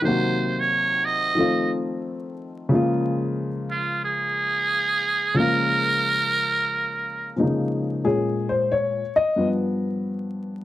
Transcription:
0.02 D#3 F#3 A#3 C5
0.06 C3 F#4
0.60 C#5
1.05 D#5
1.35 D#3 F3 A3
1.39 C4 F4
2.69 C#3 F3 G#3
2.74 A#3 F4
3.71 F4
4.05 G#4
5.34 C#3 F3 G#3 A#3 A#4
5.40 F4
7.36 C3 F3 G#3 A#3 D#4
7.43 C#3
8.04 A#2 G#3 C#4 G#4
8.49 C5
8.72 C#5
9.16 D#5
9.36 G2 F3 B3

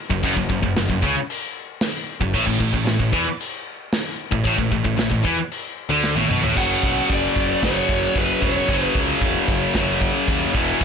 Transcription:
0.10 F#1 F#2, kick
0.23 F#1 F#2, kick, china
0.37 F#1 F#2, kick
0.49 F#1 F#2, kick
0.62 F#1 F#2, kick
0.76 F#1 F#2, snare, china
0.88 F#1 F#2, kick
1.03 C#2 C#3, kick
1.30 china
1.81 snare, china
2.20 F#1 F#2, kick
2.34 A1 A2, kick, crash, china
2.47 A1 A2, kick
2.59 A1 A2, kick
2.73 A1 A2, kick
2.85 A1 A2, snare, china
2.99 A1 A2, kick
3.13 E2 E3, kick
3.40 china
3.93 snare, china
4.32 A1 A2, kick
4.44 A1 A2, kick, china
4.58 A1 A2, kick
4.71 A1 A2, kick
4.84 A1 A2, kick
4.96 A1 A2, snare, china
5.10 A1 A2, kick
5.23 E2 E3, kick
5.52 china
5.89 D2 D3
6.04 snare
6.15 A1 A2, high tom
6.28 B1 B2, mid tom
6.42 A1 A2, floor tom
6.55 F#1 F#2 C#3 F#3 F#5, kick, crash, china
6.83 B1, kick
7.09 F#1 D5, kick, china
7.36 F#1, kick
7.63 F#1 F#2 C#3 F#3 C#5, kick, snare, china
7.89 F#1, kick
8.16 F#1 B4, kick, china
8.41 E1 F#2 C#3 F#3 C#5, kick
8.69 F#1 F#2 C#3 F#3, kick, china
8.95 C#2, kick
9.21 E1, kick, china
9.48 F#1, kick
9.74 F#1 F#2 C#3 F#3, kick, snare, china
10.01 kick
10.28 D#2, kick, china
10.54 E1 E2 B2 E3, kick
10.81 E1, kick, china, crash

